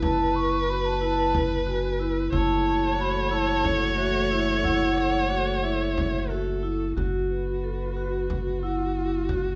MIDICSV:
0, 0, Header, 1, 7, 480
1, 0, Start_track
1, 0, Key_signature, 3, "minor"
1, 0, Tempo, 662252
1, 14, Time_signature, 7, 3, 24, 8
1, 6925, End_track
2, 0, Start_track
2, 0, Title_t, "Flute"
2, 0, Program_c, 0, 73
2, 11, Note_on_c, 0, 81, 88
2, 253, Note_on_c, 0, 85, 83
2, 264, Note_off_c, 0, 81, 0
2, 501, Note_on_c, 0, 83, 81
2, 512, Note_off_c, 0, 85, 0
2, 616, Note_on_c, 0, 81, 81
2, 627, Note_off_c, 0, 83, 0
2, 734, Note_off_c, 0, 81, 0
2, 745, Note_on_c, 0, 81, 92
2, 1003, Note_off_c, 0, 81, 0
2, 1213, Note_on_c, 0, 80, 88
2, 1545, Note_off_c, 0, 80, 0
2, 1695, Note_on_c, 0, 81, 92
2, 2176, Note_on_c, 0, 83, 84
2, 2187, Note_off_c, 0, 81, 0
2, 2356, Note_off_c, 0, 83, 0
2, 2356, Note_on_c, 0, 83, 67
2, 2412, Note_on_c, 0, 81, 85
2, 2423, Note_off_c, 0, 83, 0
2, 2654, Note_on_c, 0, 73, 73
2, 2665, Note_off_c, 0, 81, 0
2, 2883, Note_on_c, 0, 76, 82
2, 2894, Note_off_c, 0, 73, 0
2, 3362, Note_on_c, 0, 78, 91
2, 3373, Note_off_c, 0, 76, 0
2, 4077, Note_on_c, 0, 76, 76
2, 4088, Note_off_c, 0, 78, 0
2, 4809, Note_off_c, 0, 76, 0
2, 5285, Note_on_c, 0, 71, 68
2, 6225, Note_off_c, 0, 71, 0
2, 6243, Note_on_c, 0, 78, 85
2, 6584, Note_off_c, 0, 78, 0
2, 6925, End_track
3, 0, Start_track
3, 0, Title_t, "Viola"
3, 0, Program_c, 1, 41
3, 0, Note_on_c, 1, 71, 87
3, 1685, Note_off_c, 1, 71, 0
3, 1689, Note_on_c, 1, 73, 96
3, 4571, Note_on_c, 1, 69, 71
3, 4582, Note_off_c, 1, 73, 0
3, 5055, Note_off_c, 1, 69, 0
3, 5062, Note_on_c, 1, 66, 71
3, 6925, Note_off_c, 1, 66, 0
3, 6925, End_track
4, 0, Start_track
4, 0, Title_t, "Vibraphone"
4, 0, Program_c, 2, 11
4, 16, Note_on_c, 2, 64, 75
4, 395, Note_off_c, 2, 64, 0
4, 491, Note_on_c, 2, 66, 59
4, 681, Note_off_c, 2, 66, 0
4, 731, Note_on_c, 2, 64, 71
4, 1110, Note_off_c, 2, 64, 0
4, 1208, Note_on_c, 2, 66, 74
4, 1398, Note_off_c, 2, 66, 0
4, 1446, Note_on_c, 2, 64, 72
4, 1636, Note_off_c, 2, 64, 0
4, 1685, Note_on_c, 2, 64, 83
4, 2065, Note_off_c, 2, 64, 0
4, 2164, Note_on_c, 2, 66, 57
4, 2354, Note_off_c, 2, 66, 0
4, 2401, Note_on_c, 2, 64, 72
4, 2782, Note_off_c, 2, 64, 0
4, 2885, Note_on_c, 2, 66, 71
4, 3075, Note_off_c, 2, 66, 0
4, 3124, Note_on_c, 2, 64, 69
4, 3313, Note_off_c, 2, 64, 0
4, 3364, Note_on_c, 2, 64, 81
4, 3743, Note_off_c, 2, 64, 0
4, 3842, Note_on_c, 2, 66, 60
4, 4033, Note_off_c, 2, 66, 0
4, 4083, Note_on_c, 2, 64, 64
4, 4468, Note_off_c, 2, 64, 0
4, 4564, Note_on_c, 2, 66, 70
4, 4758, Note_off_c, 2, 66, 0
4, 4805, Note_on_c, 2, 64, 71
4, 5000, Note_off_c, 2, 64, 0
4, 5050, Note_on_c, 2, 66, 74
4, 5435, Note_off_c, 2, 66, 0
4, 5534, Note_on_c, 2, 69, 54
4, 5727, Note_off_c, 2, 69, 0
4, 5775, Note_on_c, 2, 66, 66
4, 6157, Note_off_c, 2, 66, 0
4, 6254, Note_on_c, 2, 64, 69
4, 6446, Note_off_c, 2, 64, 0
4, 6500, Note_on_c, 2, 64, 70
4, 6689, Note_off_c, 2, 64, 0
4, 6734, Note_on_c, 2, 66, 78
4, 6925, Note_off_c, 2, 66, 0
4, 6925, End_track
5, 0, Start_track
5, 0, Title_t, "String section"
5, 0, Program_c, 3, 48
5, 1685, Note_on_c, 3, 52, 67
5, 1685, Note_on_c, 3, 57, 60
5, 1688, Note_on_c, 3, 66, 68
5, 5023, Note_off_c, 3, 57, 0
5, 5024, Note_off_c, 3, 52, 0
5, 5025, Note_off_c, 3, 66, 0
5, 6925, End_track
6, 0, Start_track
6, 0, Title_t, "Analog synth bass"
6, 0, Program_c, 4, 38
6, 0, Note_on_c, 4, 30, 75
6, 1659, Note_off_c, 4, 30, 0
6, 1686, Note_on_c, 4, 30, 67
6, 5024, Note_off_c, 4, 30, 0
6, 5049, Note_on_c, 4, 30, 65
6, 6925, Note_off_c, 4, 30, 0
6, 6925, End_track
7, 0, Start_track
7, 0, Title_t, "Frame drum"
7, 18, Note_on_c, 9, 64, 64
7, 90, Note_off_c, 9, 64, 0
7, 743, Note_on_c, 9, 64, 19
7, 816, Note_off_c, 9, 64, 0
7, 974, Note_on_c, 9, 64, 60
7, 1047, Note_off_c, 9, 64, 0
7, 1209, Note_on_c, 9, 64, 21
7, 1282, Note_off_c, 9, 64, 0
7, 1686, Note_on_c, 9, 64, 53
7, 1758, Note_off_c, 9, 64, 0
7, 2640, Note_on_c, 9, 64, 56
7, 2712, Note_off_c, 9, 64, 0
7, 3362, Note_on_c, 9, 64, 56
7, 3435, Note_off_c, 9, 64, 0
7, 3845, Note_on_c, 9, 64, 19
7, 3918, Note_off_c, 9, 64, 0
7, 4330, Note_on_c, 9, 64, 63
7, 4403, Note_off_c, 9, 64, 0
7, 5055, Note_on_c, 9, 64, 47
7, 5128, Note_off_c, 9, 64, 0
7, 6015, Note_on_c, 9, 64, 53
7, 6088, Note_off_c, 9, 64, 0
7, 6734, Note_on_c, 9, 64, 52
7, 6806, Note_off_c, 9, 64, 0
7, 6925, End_track
0, 0, End_of_file